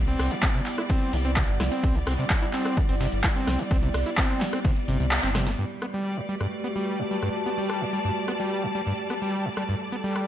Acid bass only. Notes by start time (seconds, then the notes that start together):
0.08 C4
0.31 C3
0.43 C4
0.55 C3
0.78 E4
0.90 C4
1.13 C3
1.25 C4
1.37 C3
1.60 E4
1.72 C4
1.95 C3
2.07 C4
2.19 C3
2.42 E4
2.54 C4
2.77 C3
2.89 C4
3.01 C3
3.24 E4
3.36 C4
3.59 C3
3.71 C4
3.83 C3
4.06 E4
4.18 C4
4.41 C3
4.53 C4
4.65 C3
4.88 C3
5.00 C3
5.23 C4
5.35 C3
5.47 C4
5.58 G2
5.82 B3
5.94 G3
6.17 G2
6.29 G3
6.41 G2
6.64 B3
6.76 G3
6.99 G2
7.11 G3
7.23 G2
7.46 B3
7.58 G3
7.81 G2
7.93 G3
8.05 G2
8.28 B3
8.40 G3
8.63 G2
8.75 G3
8.87 G2
9.10 B3
9.22 G3
9.45 G2
9.57 G3
9.69 G2
9.92 B3
10.04 G3